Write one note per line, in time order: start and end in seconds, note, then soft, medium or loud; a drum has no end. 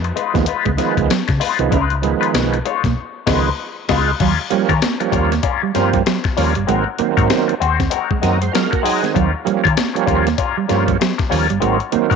0.00 0.11 F2 medium
0.04 muted clean electric guitar stroke medium
0.04 closed hi-hat soft
0.16 0.34 G#3 medium
0.16 0.34 D#4 medium
0.16 0.34 F4 medium
0.16 0.34 B4 medium
0.16 muted clean electric guitar stroke soft
0.16 closed hi-hat medium
0.34 0.45 D#2 medium
0.34 0.45 D#3 loud
0.34 0.46 F3 loud
0.34 0.46 G#3 medium
0.34 0.43 A#3 medium
0.34 0.46 B3 loud
0.34 muted clean electric guitar stroke medium
0.34 kick medium
0.34 snare soft
0.34 closed hi-hat soft
0.46 0.65 G#3 medium
0.46 0.65 D#4 medium
0.46 0.65 F4 medium
0.46 0.64 B4 loud
0.46 closed hi-hat loud
0.65 0.77 C#2 medium
0.65 0.71 G#3 medium
0.65 0.74 G#3 medium
0.65 0.72 B3 loud
0.65 muted clean electric guitar stroke soft
0.65 kick medium
0.65 closed hi-hat soft
0.77 1.13 D#3 loud
0.77 1.13 F3 medium
0.77 1.13 G#3 medium
0.77 0.92 G#3 medium
0.77 1.13 B3 loud
0.77 0.92 D#4 medium
0.77 0.93 F4 medium
0.77 0.93 B4 medium
0.77 muted clean electric guitar stroke soft
0.77 snare soft
0.77 closed hi-hat medium
0.97 1.08 C#2 medium
0.97 1.05 G#3 medium
0.97 muted clean electric guitar stroke soft
0.97 kick medium
0.97 closed hi-hat medium
1.09 1.21 F#3 medium
1.09 muted clean electric guitar stroke soft
1.09 snare loud
1.09 closed hi-hat medium
1.28 1.39 C#3 medium
1.28 muted clean electric guitar stroke soft
1.28 kick loud
1.28 snare soft
1.28 closed hi-hat soft
1.40 1.58 G#3 medium
1.40 1.58 D#4 medium
1.40 1.58 F4 loud
1.40 1.58 B4 medium
1.40 open hi-hat medium
1.59 1.70 C2 medium
1.59 1.78 D#3 loud
1.59 1.78 F3 loud
1.59 1.78 G#3 loud
1.59 1.67 G#3 medium
1.59 1.78 B3 loud
1.59 muted clean electric guitar stroke medium
1.59 closed hi-hat medium
1.71 2.13 C#2 loud
1.71 1.94 G#3 medium
1.71 1.84 C#4 loud
1.71 1.94 D#4 loud
1.71 1.94 F4 loud
1.71 1.95 B4 medium
1.71 kick loud
1.71 closed hi-hat medium
1.90 muted clean electric guitar stroke soft
1.90 closed hi-hat soft
2.02 2.59 D#3 medium
2.02 2.59 F3 medium
2.02 2.59 G#3 medium
2.02 2.15 G#3 medium
2.02 2.59 B3 loud
2.02 muted clean electric guitar stroke soft
2.02 closed hi-hat medium
2.21 2.31 G#3 medium
2.21 2.31 D#4 medium
2.21 2.31 F4 medium
2.21 2.30 B4 medium
2.21 closed hi-hat medium
2.34 2.59 B1 medium
2.34 2.46 A#3 medium
2.34 muted clean electric guitar stroke soft
2.34 snare loud
2.34 closed hi-hat loud
2.53 muted clean electric guitar stroke soft
2.53 closed hi-hat soft
2.65 2.83 G#3 medium
2.65 2.83 D#4 medium
2.65 2.83 F4 medium
2.65 2.83 C#5 medium
2.65 muted clean electric guitar stroke soft
2.65 closed hi-hat medium
2.84 2.94 B1 medium
2.84 2.93 A#3 medium
2.84 muted clean electric guitar stroke medium
2.84 kick medium
2.84 snare soft
2.84 closed hi-hat medium
3.27 3.49 C#2 loud
3.27 3.49 D#3 loud
3.27 3.49 F3 medium
3.27 3.49 G#3 medium
3.27 3.50 G#3 loud
3.27 3.50 B3 loud
3.27 3.50 D#4 loud
3.27 3.50 F4 medium
3.27 3.50 B4 loud
3.27 kick loud
3.27 snare loud
3.27 crash medium
3.88 4.12 C#2 loud
3.88 4.11 G#3 medium
3.88 4.12 D#4 medium
3.88 4.11 F4 loud
3.88 4.12 F4 loud
3.88 4.12 B4 loud
3.88 kick medium
3.88 snare loud
3.88 crash medium
4.20 4.36 D#2 loud
4.20 4.32 F#3 medium
4.20 4.37 G3 medium
4.20 4.38 C#4 loud
4.20 4.38 F4 loud
4.20 4.38 A#4 medium
4.20 kick loud
4.20 closed hi-hat medium
4.20 crash loud
4.40 muted clean electric guitar stroke soft
4.50 4.73 F3 loud
4.50 4.73 G3 medium
4.50 4.63 G3 medium
4.50 4.74 A#3 loud
4.50 4.74 C#4 loud
4.50 muted clean electric guitar stroke soft
4.50 muted fingered electric bass stroke soft
4.50 closed hi-hat medium
4.69 4.80 D#3 loud
4.69 4.79 G3 medium
4.69 4.79 C#4 medium
4.69 4.79 F4 medium
4.69 4.78 A#4 medium
4.69 kick medium
4.69 closed hi-hat medium
4.82 4.94 A#3 medium
4.82 muted clean electric guitar stroke soft
4.82 snare loud
4.82 closed hi-hat medium
5.00 5.34 F3 loud
5.00 5.34 G3 medium
5.00 5.34 A#3 medium
5.00 5.34 C#4 loud
5.00 muted clean electric guitar stroke soft
5.00 closed hi-hat soft
5.12 5.38 D#2 medium
5.12 5.30 G3 medium
5.12 5.30 C#4 medium
5.12 5.30 F4 medium
5.12 5.30 A#4 loud
5.12 muted clean electric guitar stroke soft
5.12 kick medium
5.12 closed hi-hat medium
5.31 5.39 A#3 medium
5.31 muted clean electric guitar stroke medium
5.31 snare soft
5.31 closed hi-hat medium
5.43 5.61 G3 medium
5.43 5.61 C#4 loud
5.43 5.61 F4 medium
5.43 5.61 A#4 medium
5.43 kick medium
5.43 closed hi-hat loud
5.62 5.70 G3 medium
5.62 muted clean electric guitar stroke medium
5.74 6.01 G2 medium
5.74 6.03 F3 loud
5.74 5.88 G3 medium
5.74 6.03 G3 medium
5.74 6.03 A#3 medium
5.74 6.03 C4 loud
5.74 5.89 C#4 medium
5.74 5.89 F4 medium
5.74 5.89 A#4 medium
5.74 muted clean electric guitar stroke soft
5.74 snare soft
5.74 closed hi-hat medium
5.93 6.01 G3 medium
5.93 muted clean electric guitar stroke soft
5.93 kick medium
5.93 closed hi-hat medium
6.06 6.18 F#3 medium
6.06 muted clean electric guitar stroke soft
6.06 snare loud
6.06 closed hi-hat medium
6.24 muted clean electric guitar stroke soft
6.24 kick loud
6.24 snare soft
6.24 closed hi-hat soft
6.37 6.53 D#2 loud
6.37 6.53 F3 medium
6.37 6.54 G3 medium
6.37 6.54 A#3 medium
6.37 6.54 C#4 medium
6.37 6.55 F4 medium
6.37 6.54 A#4 medium
6.37 open hi-hat medium
6.55 6.67 G1 medium
6.55 6.63 G3 medium
6.55 muted clean electric guitar stroke medium
6.55 closed hi-hat medium
6.67 6.84 G#1 loud
6.67 6.84 D#3 medium
6.67 6.84 F#3 medium
6.67 6.85 G#3 medium
6.67 6.79 G#3 loud
6.67 6.84 A#3 medium
6.67 6.85 C4 loud
6.67 6.84 C4 loud
6.67 6.85 F#4 loud
6.67 6.86 A#4 medium
6.67 closed hi-hat medium
6.87 muted clean electric guitar stroke soft
6.99 7.55 D#3 loud
6.99 7.55 F#3 medium
6.99 7.10 A#3 medium
6.99 7.55 A#3 medium
6.99 7.55 C4 loud
6.99 muted clean electric guitar stroke soft
6.99 muted fingered electric bass stroke medium
6.99 closed hi-hat medium
7.17 7.28 G#2 loud
7.17 7.27 G#3 soft
7.17 7.27 C4 medium
7.17 7.26 F#4 medium
7.17 7.26 A#4 medium
7.17 kick loud
7.17 closed hi-hat medium
7.29 7.41 C4 medium
7.29 muted clean electric guitar stroke soft
7.29 snare loud
7.29 closed hi-hat medium
7.48 muted clean electric guitar stroke soft
7.48 closed hi-hat soft
7.60 7.86 D#2 medium
7.60 7.78 G#3 medium
7.60 7.78 C4 medium
7.60 7.78 F#4 medium
7.60 7.78 C5 medium
7.60 muted clean electric guitar stroke soft
7.60 closed hi-hat medium
7.79 7.87 C4 medium
7.79 muted clean electric guitar stroke medium
7.79 kick medium
7.79 snare soft
7.79 closed hi-hat medium
7.90 8.08 G#3 medium
7.90 8.09 C4 medium
7.90 8.08 F#4 medium
7.90 8.08 A#4 medium
7.90 closed hi-hat loud
8.09 8.18 G#3 medium
8.09 muted clean electric guitar stroke soft
8.09 kick loud
8.21 8.48 F#2 medium
8.21 8.39 D#3 medium
8.21 8.39 F#3 medium
8.21 8.35 G#3 medium
8.21 8.39 A#3 medium
8.21 8.36 C4 medium
8.21 8.39 C4 medium
8.21 8.36 F#4 medium
8.21 8.36 A#4 medium
8.21 8.40 D#5 medium
8.21 muted clean electric guitar stroke soft
8.21 snare soft
8.21 closed hi-hat medium
8.41 8.50 G#3 medium
8.41 8.53 C5 medium
8.41 muted clean electric guitar stroke soft
8.41 closed hi-hat medium
8.52 8.65 F#3 medium
8.52 8.71 G#3 medium
8.52 8.71 F4 medium
8.52 8.82 A#4 medium
8.52 muted clean electric guitar stroke soft
8.52 snare loud
8.52 closed hi-hat medium
8.71 8.84 A#3 medium
8.71 8.84 F#4 medium
8.71 muted clean electric guitar stroke soft
8.71 kick medium
8.71 closed hi-hat soft
8.83 9.02 F#3 medium
8.83 9.01 G#3 loud
8.83 9.01 C4 medium
8.83 9.02 D#4 medium
8.83 9.01 F#4 loud
8.83 9.13 G#4 medium
8.83 9.01 A#4 loud
8.83 open hi-hat medium
9.02 9.32 D#3 medium
9.02 9.10 G#3 medium
9.02 9.32 C4 medium
9.02 muted clean electric guitar stroke medium
9.02 snare soft
9.02 closed hi-hat soft
9.14 9.31 D#2 loud
9.14 9.26 F#3 loud
9.14 9.32 G3 medium
9.14 9.32 C#4 medium
9.14 9.32 F4 loud
9.14 9.33 A#4 medium
9.14 kick loud
9.14 closed hi-hat medium
9.34 muted clean electric guitar stroke medium
9.45 9.68 F3 loud
9.45 9.68 G3 loud
9.45 9.57 G3 medium
9.45 9.68 A#3 medium
9.45 9.68 C#4 loud
9.45 muted clean electric guitar stroke soft
9.45 muted fingered electric bass stroke soft
9.45 closed hi-hat medium
9.64 9.75 D#3 loud
9.64 9.74 G3 medium
9.64 9.74 C#4 medium
9.64 9.73 F4 medium
9.64 9.73 A#4 medium
9.64 kick loud
9.64 closed hi-hat medium
9.76 9.88 A#3 medium
9.76 muted clean electric guitar stroke soft
9.76 snare loud
9.76 closed hi-hat loud
9.94 10.28 F3 loud
9.94 10.28 G3 medium
9.94 10.29 A#3 medium
9.94 10.29 C#4 loud
9.94 muted clean electric guitar stroke soft
9.94 closed hi-hat soft
10.06 10.33 D#2 medium
10.06 10.24 G3 medium
10.06 10.25 C#4 medium
10.06 10.25 F4 loud
10.06 10.25 A#4 medium
10.06 muted clean electric guitar stroke soft
10.06 kick medium
10.06 closed hi-hat medium
10.26 10.34 A#3 medium
10.26 muted clean electric guitar stroke soft
10.26 snare soft
10.26 closed hi-hat medium
10.38 10.55 G3 medium
10.38 10.56 C#4 medium
10.38 10.56 F4 medium
10.38 10.56 A#4 loud
10.38 kick medium
10.38 closed hi-hat loud
10.57 10.65 G3 medium
10.57 muted clean electric guitar stroke soft
10.68 10.95 G2 loud
10.68 10.97 F3 loud
10.68 10.82 G3 medium
10.68 10.97 G3 medium
10.68 10.97 A#3 medium
10.68 10.82 C#4 medium
10.68 10.97 C#4 loud
10.68 10.83 F4 medium
10.68 10.83 A#4 medium
10.68 muted clean electric guitar stroke soft
10.68 snare soft
10.68 closed hi-hat medium
10.87 10.95 G3 medium
10.87 muted clean electric guitar stroke medium
10.87 kick loud
10.87 closed hi-hat medium
11.00 11.12 F#3 medium
11.00 muted clean electric guitar stroke soft
11.00 snare loud
11.00 closed hi-hat medium
11.18 muted clean electric guitar stroke medium
11.18 kick loud
11.18 snare soft
11.18 closed hi-hat soft
11.30 11.46 D#2 loud
11.30 11.47 F3 medium
11.30 11.48 G3 medium
11.30 11.47 G3 medium
11.30 11.47 A#3 medium
11.30 11.48 C#4 medium
11.30 11.47 C#4 medium
11.30 11.47 F4 medium
11.30 11.47 A#4 medium
11.30 open hi-hat medium
11.48 11.60 G1 medium
11.48 11.57 G3 medium
11.48 muted clean electric guitar stroke soft
11.48 closed hi-hat medium
11.60 11.78 G#1 loud
11.60 11.78 D#3 medium
11.60 11.78 F#3 medium
11.60 11.78 G#3 medium
11.60 11.73 G#3 medium
11.60 11.78 A#3 medium
11.60 11.79 C4 medium
11.60 11.78 C4 loud
11.60 11.79 F#4 medium
11.60 11.79 A#4 medium
11.60 closed hi-hat medium
11.80 muted clean electric guitar stroke soft
11.80 closed hi-hat soft
11.92 12.16 D#3 medium
11.92 12.16 F#3 medium
11.92 12.16 A#3 medium
11.92 12.04 A#3 medium
11.92 12.16 C4 loud
11.92 muted clean electric guitar stroke soft
11.92 muted fingered electric bass stroke medium
11.92 closed hi-hat medium
12.10 12.16 G#2 loud
12.10 12.16 G#3 medium
12.10 12.16 C4 medium
12.10 12.16 F#4 medium
12.10 12.16 A#4 medium
12.10 kick loud
12.10 closed hi-hat medium